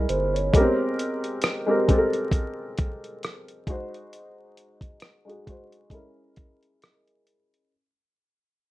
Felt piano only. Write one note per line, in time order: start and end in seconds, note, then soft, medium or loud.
0.00 0.18 G#3 medium
0.00 0.19 C#4 medium
0.00 0.20 E4 medium
0.00 0.21 A#4 medium
0.53 1.32 G#3 medium
0.53 0.61 B3 medium
0.53 1.33 G4 medium
0.57 1.36 C4 medium
0.57 1.34 A#4 medium
1.66 1.81 G#3 medium
1.66 1.81 C4 medium
1.66 1.82 G4 medium
1.71 1.83 A#4 medium
1.88 3.12 G#3 medium
1.88 3.13 C4 medium
1.88 3.14 G4 medium
1.88 1.97 A4 medium
1.98 3.17 A#4 medium
3.67 4.94 G#3 medium
3.67 4.94 D#4 medium
3.67 4.95 F#4 medium
3.67 4.96 C5 medium
5.25 5.39 G#3 medium
5.25 5.40 D#4 medium
5.25 5.41 F#4 medium
5.25 5.41 G#4 medium
5.46 5.88 G#3 medium
5.46 5.92 D#4 medium
5.46 5.92 F#4 medium
5.46 5.93 C5 medium
5.90 7.35 G#3 medium
5.90 7.36 C#4 medium
5.90 7.36 E4 medium
5.94 7.37 A#4 medium